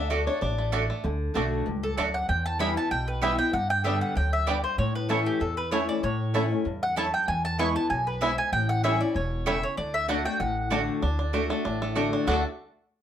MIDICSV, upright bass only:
0, 0, Header, 1, 2, 480
1, 0, Start_track
1, 0, Key_signature, 2, "major"
1, 0, Tempo, 312012
1, 1603, Time_signature, 4, 2, 24, 8
1, 20030, End_track
2, 0, Start_track
2, 0, Title_t, "Upright bass"
2, 0, Program_c, 0, 32
2, 0, Note_on_c, 0, 38, 109
2, 404, Note_off_c, 0, 38, 0
2, 644, Note_on_c, 0, 33, 95
2, 1364, Note_off_c, 0, 33, 0
2, 1607, Note_on_c, 0, 38, 104
2, 1965, Note_off_c, 0, 38, 0
2, 2084, Note_on_c, 0, 35, 87
2, 2491, Note_off_c, 0, 35, 0
2, 2563, Note_on_c, 0, 37, 81
2, 2970, Note_off_c, 0, 37, 0
2, 3041, Note_on_c, 0, 38, 78
2, 3449, Note_off_c, 0, 38, 0
2, 3523, Note_on_c, 0, 40, 107
2, 4243, Note_off_c, 0, 40, 0
2, 4479, Note_on_c, 0, 35, 80
2, 5200, Note_off_c, 0, 35, 0
2, 5434, Note_on_c, 0, 43, 104
2, 6157, Note_off_c, 0, 43, 0
2, 6402, Note_on_c, 0, 38, 81
2, 7122, Note_off_c, 0, 38, 0
2, 7357, Note_on_c, 0, 45, 99
2, 8078, Note_off_c, 0, 45, 0
2, 8318, Note_on_c, 0, 40, 84
2, 9039, Note_off_c, 0, 40, 0
2, 9279, Note_on_c, 0, 45, 98
2, 10000, Note_off_c, 0, 45, 0
2, 10235, Note_on_c, 0, 40, 82
2, 10958, Note_off_c, 0, 40, 0
2, 11200, Note_on_c, 0, 40, 107
2, 11921, Note_off_c, 0, 40, 0
2, 12156, Note_on_c, 0, 35, 81
2, 12878, Note_off_c, 0, 35, 0
2, 13112, Note_on_c, 0, 33, 100
2, 13836, Note_off_c, 0, 33, 0
2, 14080, Note_on_c, 0, 28, 85
2, 14802, Note_off_c, 0, 28, 0
2, 15042, Note_on_c, 0, 38, 97
2, 15764, Note_off_c, 0, 38, 0
2, 16000, Note_on_c, 0, 33, 82
2, 16723, Note_off_c, 0, 33, 0
2, 16964, Note_on_c, 0, 38, 100
2, 17686, Note_off_c, 0, 38, 0
2, 17924, Note_on_c, 0, 33, 77
2, 18647, Note_off_c, 0, 33, 0
2, 18880, Note_on_c, 0, 38, 95
2, 19122, Note_off_c, 0, 38, 0
2, 20030, End_track
0, 0, End_of_file